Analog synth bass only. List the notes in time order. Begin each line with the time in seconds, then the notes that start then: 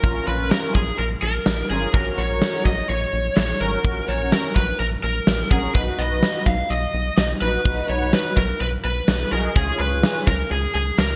0.04 A#1
0.27 A#1
0.75 A#1
0.99 A#1
1.23 A#1
1.46 A#1
1.70 G#1
1.94 A#1
2.18 A#1
2.65 A#1
2.89 A#1
3.13 A#1
3.37 A#1
3.61 G#1
3.85 A#1
4.08 A#1
4.56 A#1
4.80 A#1
5.04 A#1
5.27 A#1
5.51 A#1
5.75 B1
5.99 B1
6.46 B1
6.70 B1
6.94 B1
7.18 B1
7.41 A#1
7.65 B1
7.89 B1
8.37 B1
8.61 B1
8.85 B1
9.08 B1
9.32 B1
9.56 C#2
9.80 C#2
10.27 C#2
10.51 C#2
10.75 C#2
10.98 C#2